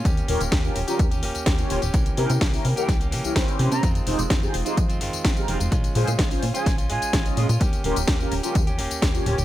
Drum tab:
HH |xxoxx-oxxxoxxxox|xxoxxooxxxoxxxox|xxoxx-oxxxoxxxox|xxoxxooxxxoxxxox|
TB |xx-xxx-xxx-xxx-x|xx-xxx-xxx-xxx-x|xx-xxx-xxx-xxx-x|xx-xxx-xxx-xxx-x|
SD |----o-------o---|----o---o---o---|----o-------o---|----o---o---o---|
BD |o---o---o---o---|o---o---o---o---|o---o---o---o---|o---o---o---o---|

HH |xxoxx-oxxxoxxxox|
TB |xx-xxx-xxx-xxx-x|
SD |----o-------o---|
BD |o---o---o---o---|